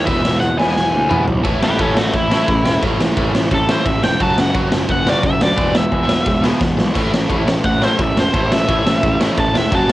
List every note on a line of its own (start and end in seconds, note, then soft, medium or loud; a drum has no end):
0.06 0.22 E1 medium
0.06 1.43 E2 medium
0.06 1.43 B2 medium
0.06 0.21 E3 loud
0.06 1.44 E3 loud
0.06 0.21 G#3 loud
0.06 0.21 B3 loud
0.06 0.21 E4 loud
0.06 0.39 E5 loud
0.06 kick loud
0.06 open hi-hat medium
0.24 0.40 E1 medium
0.24 snare loud
0.41 0.57 E1 loud
0.41 0.58 F#5 loud
0.41 open hi-hat medium
0.58 0.74 E1 medium
0.58 0.72 E3 medium
0.58 0.73 G#3 medium
0.58 0.73 B3 medium
0.58 0.73 E4 loud
0.58 1.23 G#5 loud
0.58 snare loud
0.76 0.91 E1 loud
0.76 snare medium
0.93 1.09 D2 medium
1.10 1.26 E1 medium
1.10 1.24 E3 loud
1.10 1.24 G#3 medium
1.10 1.24 B3 loud
1.10 1.25 E4 loud
1.10 mid tom loud
1.28 1.43 B1 loud
1.28 floor tom medium
1.43 1.57 A1 medium
1.43 2.80 A2 medium
1.43 2.82 E3 medium
1.43 1.61 A3 loud
1.43 2.84 A3 loud
1.43 1.61 C#4 loud
1.43 1.62 E4 loud
1.43 kick loud
1.43 ride medium
1.62 1.75 A1 medium
1.62 1.77 A3 medium
1.62 1.77 C#4 medium
1.62 1.80 G4 medium
1.62 1.81 B4 medium
1.62 snare loud
1.79 1.92 A1 medium
1.79 1.95 A3 medium
1.79 1.95 C#4 medium
1.79 1.97 C#4 medium
1.79 1.96 E4 medium
1.79 1.97 A4 medium
1.79 kick loud
1.79 ride medium
1.96 2.09 A1 medium
1.96 2.12 A3 medium
1.96 2.13 A3 loud
1.96 2.12 C#4 medium
1.96 2.14 F#4 medium
1.96 snare loud
2.14 2.38 A1 loud
2.14 2.29 A3 medium
2.14 2.30 C#4 medium
2.14 2.81 E4 loud
2.14 kick loud
2.14 ride medium
2.30 2.47 A3 medium
2.30 2.47 C#4 loud
2.30 2.47 E4 loud
2.30 snare loud
2.48 2.60 A1 medium
2.48 2.64 A3 medium
2.48 2.63 C#4 medium
2.48 kick loud
2.48 ride medium
2.65 2.77 E1 medium
2.65 2.81 A3 medium
2.65 2.81 C#4 medium
2.65 snare loud
2.81 2.95 A1 loud
2.81 4.18 A2 medium
2.81 4.20 E3 medium
2.81 2.99 A3 loud
2.81 4.20 A3 medium
2.81 2.99 C#4 loud
2.81 2.99 E4 loud
2.81 kick loud
2.81 ride medium
3.00 3.12 A1 medium
3.00 3.15 A3 medium
3.00 3.16 C#4 medium
3.00 snare loud
3.17 3.29 A1 medium
3.17 3.33 A3 loud
3.17 3.34 C#4 loud
3.17 3.34 E4 loud
3.17 kick loud
3.17 ride medium
3.34 3.47 A1 medium
3.34 3.50 A3 medium
3.34 3.50 C#4 medium
3.34 snare loud
3.51 3.76 A1 medium
3.51 3.67 A3 medium
3.51 3.67 C#4 medium
3.51 3.70 A4 medium
3.51 kick loud
3.51 ride medium
3.69 3.84 A3 loud
3.69 3.85 C#4 loud
3.69 3.86 E4 loud
3.69 3.86 C5 medium
3.69 snare loud
3.86 3.98 A1 medium
3.86 4.01 A3 medium
3.86 4.02 C#4 medium
3.86 4.03 E5 medium
3.86 kick loud
3.86 ride medium
4.03 4.16 F1 medium
4.03 4.19 A3 medium
4.03 4.19 C#4 medium
4.03 4.21 G5 medium
4.03 snare loud
4.18 4.33 F#1 medium
4.18 5.56 F#2 loud
4.18 5.57 C#3 loud
4.18 4.36 F#3 loud
4.18 5.58 F#3 medium
4.18 4.37 C#4 loud
4.18 4.37 F#4 loud
4.18 4.39 A5 medium
4.18 kick loud
4.18 ride medium
4.38 4.50 F#1 medium
4.38 4.53 F#3 medium
4.38 4.54 C#4 medium
4.38 4.55 F#5 loud
4.38 snare loud
4.54 4.67 F#1 loud
4.54 4.70 F#3 medium
4.54 4.70 C#4 medium
4.54 4.71 F#4 loud
4.54 kick loud
4.54 ride medium
4.71 4.85 F#1 medium
4.71 4.87 F#3 medium
4.71 4.87 C#4 medium
4.71 snare loud
4.89 5.13 F#1 loud
4.89 5.05 F#3 medium
4.89 5.05 C#4 medium
4.89 5.07 F#5 loud
4.89 kick loud
4.89 ride medium
5.06 5.22 F#3 medium
5.06 5.22 C#4 loud
5.06 5.23 F#4 loud
5.06 5.25 D5 loud
5.06 snare loud
5.23 5.36 F#1 loud
5.23 5.39 F#3 medium
5.23 5.39 C#4 medium
5.23 5.42 E5 medium
5.23 kick loud
5.23 ride medium
5.40 5.53 D2 medium
5.40 5.56 F#3 medium
5.40 5.56 C#4 medium
5.40 5.75 D5 medium
5.40 snare loud
5.56 5.70 E1 medium
5.56 6.94 E2 medium
5.56 6.94 B2 loud
5.56 5.73 E3 medium
5.56 6.96 E3 loud
5.56 5.74 G#3 loud
5.56 5.74 B3 loud
5.56 kick loud
5.56 ride medium
5.74 5.87 E1 medium
5.74 5.90 E3 medium
5.74 5.91 G#3 medium
5.74 6.43 E5 loud
5.74 snare loud
5.92 6.04 E1 medium
5.92 6.08 E3 medium
5.92 6.09 G#3 medium
5.92 6.09 B3 medium
5.92 kick loud
5.92 ride medium
6.09 6.21 E1 medium
6.09 6.25 E3 medium
6.09 6.25 G#3 medium
6.09 snare loud
6.26 6.51 E1 loud
6.26 6.41 E3 medium
6.26 6.42 G#3 medium
6.26 kick loud
6.26 ride medium
6.42 6.59 E3 loud
6.42 6.59 G#3 loud
6.42 6.60 B3 loud
6.42 snare medium
6.60 6.73 E1 medium
6.60 6.76 E3 medium
6.60 6.76 G#3 medium
6.60 kick loud
6.60 snare medium
6.77 6.91 B1 medium
6.77 6.93 E3 medium
6.77 6.94 G#3 medium
6.77 snare loud
6.94 7.08 A1 medium
6.94 8.31 A2 medium
6.94 8.33 E3 medium
6.94 7.11 A3 loud
6.94 8.35 A3 medium
6.94 7.11 C#4 loud
6.94 7.12 E4 loud
6.94 kick loud
6.94 crash loud
7.12 7.25 A1 medium
7.12 7.28 A3 medium
7.12 7.28 C#4 medium
7.12 snare loud
7.30 7.42 A1 medium
7.30 7.46 A3 medium
7.30 7.46 C#4 medium
7.30 7.47 E4 medium
7.30 kick loud
7.30 ride medium
7.47 7.60 A1 medium
7.47 7.63 A3 medium
7.47 7.63 C#4 medium
7.47 snare loud
7.64 7.89 A1 loud
7.64 7.80 A3 medium
7.64 7.80 C#4 medium
7.64 7.82 F#5 loud
7.64 kick loud
7.64 ride medium
7.82 7.98 A3 loud
7.82 7.98 C#4 medium
7.82 7.99 E4 loud
7.82 8.00 C5 loud
7.82 snare medium
7.99 8.11 A1 medium
7.99 8.15 A3 medium
7.99 8.15 C#4 medium
7.99 8.17 E5 loud
7.99 kick loud
7.99 ride medium
8.17 8.29 E1 medium
8.17 8.32 A3 medium
8.17 8.32 C#4 loud
8.17 8.52 C5 loud
8.17 snare loud
8.32 8.46 A1 loud
8.32 9.70 A2 medium
8.32 9.71 E3 medium
8.32 8.50 A3 loud
8.32 9.72 A3 medium
8.32 8.50 C#4 loud
8.32 8.50 E4 loud
8.32 kick loud
8.32 ride medium
8.51 8.63 A1 medium
8.51 8.67 A3 medium
8.51 8.67 C#4 medium
8.51 9.19 E5 loud
8.51 snare loud
8.68 8.81 A1 medium
8.68 8.84 A3 medium
8.68 8.85 C#4 medium
8.68 8.85 E4 loud
8.68 kick loud
8.68 ride medium
8.86 8.98 A1 loud
8.86 9.01 A3 medium
8.86 9.02 C#4 medium
8.86 snare loud
9.03 9.27 A1 medium
9.03 9.19 A3 medium
9.03 9.19 C#4 medium
9.03 kick loud
9.03 ride medium
9.21 9.37 A3 loud
9.21 9.37 C#4 loud
9.21 9.37 E4 loud
9.21 snare loud
9.38 9.50 A1 medium
9.38 9.53 A3 medium
9.38 9.53 C#4 medium
9.38 9.55 A5 loud
9.38 kick loud
9.38 ride medium
9.54 9.67 E1 medium
9.54 9.70 A3 medium
9.54 9.70 C#4 loud
9.54 9.73 E5 loud
9.54 snare loud
9.71 9.84 F#1 loud
9.71 9.92 F#2 medium
9.71 9.92 C#3 medium
9.71 9.88 F#3 medium
9.71 9.92 F#3 loud
9.71 9.88 C#4 loud
9.71 9.89 F#4 loud
9.71 kick loud
9.71 ride medium
9.75 9.90 A5 medium